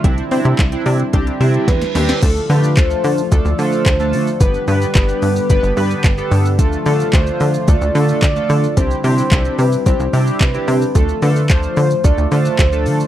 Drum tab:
CC |----------------|x---------------|----------------|----------------|
HH |xxoxxxoxxxoxxxox|x-o-x-o-x-o-x-o-|x-o-x-o-x-o-x-o-|x-o-x-o-x-o-x-o-|
SH |----------------|xxxxxxxxxxxxxxxx|xxxxxxxxxxxxxxxx|xxxxxxxxxxxxxxxx|
CP |----x-----------|----x-------x---|----x-------x---|----x-------x---|
SD |------------oooo|----------------|----------------|----------------|
BD |o---o---o---o---|o---o---o---o---|o---o---o---o---|o---o---o---o---|

CC |----------------|----------------|
HH |x-o-x-o-x-o-x-o-|x-o-x-o-x-o-x-o-|
SH |xxxxxxxxxxxxxxxx|xxxxxxxxxxxxxxxx|
CP |----x-------x---|----x-------x---|
SD |----------------|----------------|
BD |o---o---o---o---|o---o---o---o---|